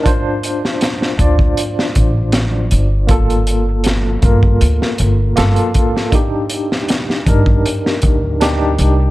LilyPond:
<<
  \new Staff \with { instrumentName = "Tine electric piano" } { \time 4/4 \key g \minor \tempo 4 = 79 <d' f' c''>4. <d' f' d''>4. r4 | <bes f' a'>4. <bes f' bes'>4. <bes f' a'>4 | <d' ees' g'>4. <d' ees' bes'>4. <d' ees' g'>4 | }
  \new Staff \with { instrumentName = "Upright bass" } { \clef bass \time 4/4 \key g \minor r4. d,8 r8 a,,4 g,,8~ | g,,4. g,,8 d,8 g,,8 g,,8 r8 | r4. g,,8 r8 d,4 c,8 | }
  \new DrumStaff \with { instrumentName = "Drums" } \drummode { \time 4/4 <hh bd>8 hh16 sn16 <hh sn>16 sn16 <hh bd>16 bd16 hh16 sn16 <hh bd>8 <hh sn>8 hh8 | <hh bd>16 hh16 hh8 <hh sn>8 <hh bd>16 bd16 hh16 sn16 hh8 <hh sn>16 hh16 <hh bd>16 sn16 | <hh bd>8 hh16 sn16 <hh sn>16 sn16 <hh bd>16 bd16 hh16 sn16 <hh bd>8 <hh sn>8 hh8 | }
>>